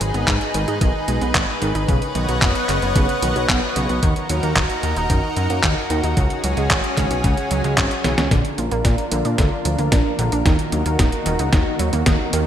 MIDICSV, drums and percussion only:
0, 0, Header, 1, 2, 480
1, 0, Start_track
1, 0, Key_signature, -6, "minor"
1, 0, Tempo, 535714
1, 1688, Time_signature, 4, 2, 24, 8
1, 11172, End_track
2, 0, Start_track
2, 0, Title_t, "Drums"
2, 8, Note_on_c, 9, 42, 74
2, 97, Note_off_c, 9, 42, 0
2, 128, Note_on_c, 9, 42, 50
2, 218, Note_off_c, 9, 42, 0
2, 248, Note_on_c, 9, 36, 115
2, 248, Note_on_c, 9, 39, 110
2, 248, Note_on_c, 9, 42, 67
2, 337, Note_off_c, 9, 39, 0
2, 337, Note_off_c, 9, 42, 0
2, 338, Note_off_c, 9, 36, 0
2, 368, Note_on_c, 9, 42, 31
2, 458, Note_off_c, 9, 42, 0
2, 487, Note_on_c, 9, 42, 69
2, 577, Note_off_c, 9, 42, 0
2, 608, Note_on_c, 9, 42, 48
2, 698, Note_off_c, 9, 42, 0
2, 728, Note_on_c, 9, 36, 111
2, 728, Note_on_c, 9, 42, 69
2, 817, Note_off_c, 9, 42, 0
2, 818, Note_off_c, 9, 36, 0
2, 968, Note_on_c, 9, 42, 77
2, 1058, Note_off_c, 9, 42, 0
2, 1089, Note_on_c, 9, 42, 49
2, 1178, Note_off_c, 9, 42, 0
2, 1208, Note_on_c, 9, 36, 110
2, 1209, Note_on_c, 9, 39, 118
2, 1209, Note_on_c, 9, 42, 75
2, 1298, Note_off_c, 9, 36, 0
2, 1298, Note_off_c, 9, 39, 0
2, 1298, Note_off_c, 9, 42, 0
2, 1449, Note_on_c, 9, 42, 72
2, 1538, Note_off_c, 9, 42, 0
2, 1569, Note_on_c, 9, 42, 47
2, 1658, Note_off_c, 9, 42, 0
2, 1688, Note_on_c, 9, 36, 109
2, 1689, Note_on_c, 9, 42, 70
2, 1778, Note_off_c, 9, 36, 0
2, 1779, Note_off_c, 9, 42, 0
2, 1809, Note_on_c, 9, 42, 33
2, 1898, Note_off_c, 9, 42, 0
2, 1927, Note_on_c, 9, 42, 75
2, 2017, Note_off_c, 9, 42, 0
2, 2048, Note_on_c, 9, 42, 50
2, 2138, Note_off_c, 9, 42, 0
2, 2168, Note_on_c, 9, 39, 99
2, 2168, Note_on_c, 9, 42, 68
2, 2169, Note_on_c, 9, 36, 116
2, 2258, Note_off_c, 9, 36, 0
2, 2258, Note_off_c, 9, 39, 0
2, 2258, Note_off_c, 9, 42, 0
2, 2288, Note_on_c, 9, 42, 34
2, 2378, Note_off_c, 9, 42, 0
2, 2409, Note_on_c, 9, 39, 33
2, 2409, Note_on_c, 9, 42, 73
2, 2499, Note_off_c, 9, 39, 0
2, 2499, Note_off_c, 9, 42, 0
2, 2529, Note_on_c, 9, 42, 47
2, 2618, Note_off_c, 9, 42, 0
2, 2649, Note_on_c, 9, 36, 112
2, 2649, Note_on_c, 9, 42, 70
2, 2738, Note_off_c, 9, 36, 0
2, 2738, Note_off_c, 9, 42, 0
2, 2769, Note_on_c, 9, 42, 35
2, 2859, Note_off_c, 9, 42, 0
2, 2889, Note_on_c, 9, 42, 78
2, 2979, Note_off_c, 9, 42, 0
2, 3010, Note_on_c, 9, 42, 47
2, 3100, Note_off_c, 9, 42, 0
2, 3129, Note_on_c, 9, 36, 110
2, 3129, Note_on_c, 9, 39, 116
2, 3129, Note_on_c, 9, 42, 75
2, 3219, Note_off_c, 9, 36, 0
2, 3219, Note_off_c, 9, 39, 0
2, 3219, Note_off_c, 9, 42, 0
2, 3369, Note_on_c, 9, 42, 74
2, 3459, Note_off_c, 9, 42, 0
2, 3489, Note_on_c, 9, 42, 47
2, 3578, Note_off_c, 9, 42, 0
2, 3608, Note_on_c, 9, 42, 71
2, 3609, Note_on_c, 9, 36, 111
2, 3698, Note_off_c, 9, 36, 0
2, 3698, Note_off_c, 9, 42, 0
2, 3729, Note_on_c, 9, 42, 35
2, 3818, Note_off_c, 9, 42, 0
2, 3848, Note_on_c, 9, 42, 76
2, 3938, Note_off_c, 9, 42, 0
2, 3969, Note_on_c, 9, 42, 51
2, 4059, Note_off_c, 9, 42, 0
2, 4088, Note_on_c, 9, 39, 100
2, 4088, Note_on_c, 9, 42, 70
2, 4089, Note_on_c, 9, 36, 108
2, 4178, Note_off_c, 9, 36, 0
2, 4178, Note_off_c, 9, 39, 0
2, 4178, Note_off_c, 9, 42, 0
2, 4208, Note_on_c, 9, 42, 34
2, 4297, Note_off_c, 9, 42, 0
2, 4329, Note_on_c, 9, 42, 75
2, 4418, Note_off_c, 9, 42, 0
2, 4448, Note_on_c, 9, 42, 49
2, 4538, Note_off_c, 9, 42, 0
2, 4568, Note_on_c, 9, 42, 72
2, 4569, Note_on_c, 9, 36, 104
2, 4658, Note_off_c, 9, 36, 0
2, 4658, Note_off_c, 9, 42, 0
2, 4807, Note_on_c, 9, 42, 78
2, 4897, Note_off_c, 9, 42, 0
2, 4928, Note_on_c, 9, 42, 49
2, 5017, Note_off_c, 9, 42, 0
2, 5047, Note_on_c, 9, 39, 111
2, 5047, Note_on_c, 9, 42, 75
2, 5049, Note_on_c, 9, 36, 108
2, 5137, Note_off_c, 9, 39, 0
2, 5137, Note_off_c, 9, 42, 0
2, 5138, Note_off_c, 9, 36, 0
2, 5287, Note_on_c, 9, 42, 73
2, 5377, Note_off_c, 9, 42, 0
2, 5408, Note_on_c, 9, 42, 48
2, 5497, Note_off_c, 9, 42, 0
2, 5527, Note_on_c, 9, 42, 78
2, 5528, Note_on_c, 9, 36, 110
2, 5617, Note_off_c, 9, 42, 0
2, 5618, Note_off_c, 9, 36, 0
2, 5647, Note_on_c, 9, 42, 36
2, 5737, Note_off_c, 9, 42, 0
2, 5767, Note_on_c, 9, 42, 79
2, 5857, Note_off_c, 9, 42, 0
2, 5887, Note_on_c, 9, 42, 51
2, 5977, Note_off_c, 9, 42, 0
2, 6008, Note_on_c, 9, 36, 116
2, 6008, Note_on_c, 9, 39, 108
2, 6008, Note_on_c, 9, 42, 72
2, 6097, Note_off_c, 9, 39, 0
2, 6097, Note_off_c, 9, 42, 0
2, 6098, Note_off_c, 9, 36, 0
2, 6128, Note_on_c, 9, 42, 37
2, 6218, Note_off_c, 9, 42, 0
2, 6248, Note_on_c, 9, 36, 60
2, 6248, Note_on_c, 9, 39, 33
2, 6248, Note_on_c, 9, 42, 76
2, 6338, Note_off_c, 9, 36, 0
2, 6338, Note_off_c, 9, 39, 0
2, 6338, Note_off_c, 9, 42, 0
2, 6368, Note_on_c, 9, 42, 51
2, 6457, Note_off_c, 9, 42, 0
2, 6488, Note_on_c, 9, 36, 111
2, 6488, Note_on_c, 9, 42, 75
2, 6577, Note_off_c, 9, 42, 0
2, 6578, Note_off_c, 9, 36, 0
2, 6608, Note_on_c, 9, 42, 37
2, 6697, Note_off_c, 9, 42, 0
2, 6727, Note_on_c, 9, 42, 81
2, 6817, Note_off_c, 9, 42, 0
2, 6848, Note_on_c, 9, 42, 51
2, 6938, Note_off_c, 9, 42, 0
2, 6968, Note_on_c, 9, 36, 109
2, 6968, Note_on_c, 9, 39, 113
2, 6968, Note_on_c, 9, 42, 80
2, 7057, Note_off_c, 9, 39, 0
2, 7057, Note_off_c, 9, 42, 0
2, 7058, Note_off_c, 9, 36, 0
2, 7088, Note_on_c, 9, 42, 36
2, 7178, Note_off_c, 9, 42, 0
2, 7207, Note_on_c, 9, 38, 60
2, 7207, Note_on_c, 9, 42, 76
2, 7297, Note_off_c, 9, 38, 0
2, 7297, Note_off_c, 9, 42, 0
2, 7328, Note_on_c, 9, 38, 73
2, 7328, Note_on_c, 9, 42, 52
2, 7418, Note_off_c, 9, 38, 0
2, 7418, Note_off_c, 9, 42, 0
2, 7448, Note_on_c, 9, 36, 115
2, 7449, Note_on_c, 9, 38, 46
2, 7449, Note_on_c, 9, 42, 79
2, 7538, Note_off_c, 9, 36, 0
2, 7538, Note_off_c, 9, 38, 0
2, 7538, Note_off_c, 9, 42, 0
2, 7568, Note_on_c, 9, 42, 36
2, 7658, Note_off_c, 9, 42, 0
2, 7688, Note_on_c, 9, 42, 81
2, 7778, Note_off_c, 9, 42, 0
2, 7808, Note_on_c, 9, 42, 55
2, 7898, Note_off_c, 9, 42, 0
2, 7927, Note_on_c, 9, 38, 45
2, 7927, Note_on_c, 9, 42, 75
2, 7928, Note_on_c, 9, 36, 116
2, 8017, Note_off_c, 9, 38, 0
2, 8017, Note_off_c, 9, 42, 0
2, 8018, Note_off_c, 9, 36, 0
2, 8048, Note_on_c, 9, 42, 34
2, 8137, Note_off_c, 9, 42, 0
2, 8167, Note_on_c, 9, 42, 82
2, 8257, Note_off_c, 9, 42, 0
2, 8288, Note_on_c, 9, 42, 51
2, 8377, Note_off_c, 9, 42, 0
2, 8407, Note_on_c, 9, 38, 50
2, 8407, Note_on_c, 9, 42, 79
2, 8409, Note_on_c, 9, 36, 113
2, 8497, Note_off_c, 9, 38, 0
2, 8497, Note_off_c, 9, 42, 0
2, 8498, Note_off_c, 9, 36, 0
2, 8648, Note_on_c, 9, 42, 78
2, 8738, Note_off_c, 9, 42, 0
2, 8768, Note_on_c, 9, 42, 52
2, 8857, Note_off_c, 9, 42, 0
2, 8888, Note_on_c, 9, 38, 58
2, 8888, Note_on_c, 9, 42, 83
2, 8889, Note_on_c, 9, 36, 114
2, 8978, Note_off_c, 9, 36, 0
2, 8978, Note_off_c, 9, 38, 0
2, 8978, Note_off_c, 9, 42, 0
2, 9128, Note_on_c, 9, 42, 79
2, 9218, Note_off_c, 9, 42, 0
2, 9248, Note_on_c, 9, 42, 51
2, 9338, Note_off_c, 9, 42, 0
2, 9368, Note_on_c, 9, 38, 58
2, 9368, Note_on_c, 9, 42, 82
2, 9369, Note_on_c, 9, 36, 118
2, 9458, Note_off_c, 9, 36, 0
2, 9458, Note_off_c, 9, 38, 0
2, 9458, Note_off_c, 9, 42, 0
2, 9488, Note_on_c, 9, 42, 38
2, 9578, Note_off_c, 9, 42, 0
2, 9608, Note_on_c, 9, 42, 81
2, 9698, Note_off_c, 9, 42, 0
2, 9728, Note_on_c, 9, 42, 58
2, 9818, Note_off_c, 9, 42, 0
2, 9848, Note_on_c, 9, 38, 57
2, 9848, Note_on_c, 9, 42, 79
2, 9849, Note_on_c, 9, 36, 118
2, 9938, Note_off_c, 9, 38, 0
2, 9938, Note_off_c, 9, 42, 0
2, 9939, Note_off_c, 9, 36, 0
2, 9968, Note_on_c, 9, 42, 37
2, 10057, Note_off_c, 9, 42, 0
2, 10088, Note_on_c, 9, 42, 81
2, 10177, Note_off_c, 9, 42, 0
2, 10207, Note_on_c, 9, 42, 52
2, 10297, Note_off_c, 9, 42, 0
2, 10327, Note_on_c, 9, 38, 59
2, 10327, Note_on_c, 9, 42, 77
2, 10329, Note_on_c, 9, 36, 119
2, 10417, Note_off_c, 9, 38, 0
2, 10417, Note_off_c, 9, 42, 0
2, 10419, Note_off_c, 9, 36, 0
2, 10567, Note_on_c, 9, 42, 80
2, 10657, Note_off_c, 9, 42, 0
2, 10688, Note_on_c, 9, 42, 52
2, 10778, Note_off_c, 9, 42, 0
2, 10808, Note_on_c, 9, 38, 68
2, 10808, Note_on_c, 9, 42, 85
2, 10809, Note_on_c, 9, 36, 118
2, 10897, Note_off_c, 9, 38, 0
2, 10897, Note_off_c, 9, 42, 0
2, 10899, Note_off_c, 9, 36, 0
2, 11048, Note_on_c, 9, 42, 83
2, 11138, Note_off_c, 9, 42, 0
2, 11172, End_track
0, 0, End_of_file